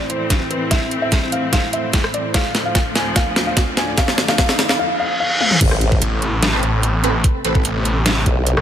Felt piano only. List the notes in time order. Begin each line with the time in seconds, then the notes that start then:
0.10 C5
0.51 B4
0.71 E5
1.02 E5
1.32 F5
1.53 F5
1.73 E5
2.14 D5
2.35 F5
2.65 F5
2.96 G#5
3.16 F5
3.47 F5
3.77 G#5
3.98 F5
4.29 F5
4.38 F5
4.69 F5
4.79 F5
5.00 F5
5.20 F5
5.41 F5